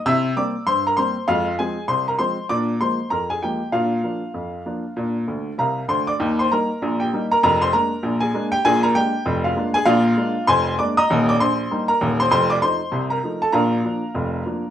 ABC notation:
X:1
M:2/4
L:1/16
Q:"Swing 16ths" 1/4=98
K:Bbmix
V:1 name="Upright piano"
[=e=e']2 [dd']2 [cc'] [Bb] [cc']2 | [Ff]2 [Aa]2 [cc'] [Bb] [cc']2 | [dd']2 [cc']2 [Bb] [Aa] [Gg]2 | [Ff]8- |
[Ff]4 [Bfb]2 [cc'] [dd']- | [dd'] [cc'] [Bb]3 [Gg]2 [Bb] | [Bb] [cc'] [Bb]3 [Aa]2 [Gg] | [Aa] [Bb] [Gg]3 [Ff]2 [Aa] |
[Fdf]4 [cac']2 [dd'] [ebe']- | [ebe'] [dd'] [cc']3 [Bb]2 [cc'] | [cc'] [dd'] [cc']3 [Bb]2 [=A=a] | [Bfb]8 |]
V:2 name="Upright piano" clef=bass
[C,=E]2 [G,B,C]2 G,,2 [G,B,C]2 | [F,,A,]2 [F,A,C]2 C,,2 [F,A,C]2 | [B,,D]2 [F,A,B,]2 F,,2 [F,A,B,]2 | [B,,D]2 [F,B,D]2 F,,2 [F,B,D]2 |
[B,,D]2 [D,,D,]2 [C,,C,]2 [D,,D,]2 | [E,,E,]2 [G,B,E]2 [B,,,B,,]2 [G,B,E]2 | [F,,,F,,]2 [A,B,D]2 [B,,,B,,]2 [A,B,D]2 | [B,,,B,,]2 [A,B,D]2 [F,,,F,,]2 [A,B,D]2 |
[B,,,B,,]2 [A,B,D]2 [F,,,F,,]2 [A,B,D]2 | [E,,,E,,]2 B,,,2 [G,B,E]2 [E,,,E,,]2 | [F,,,F,,]2 [F,=A,E]2 [C,,C,]2 [F,A,E]2 | [B,,,B,,]2 [F,B,D]2 [F,,,F,,]2 [F,B,D]2 |]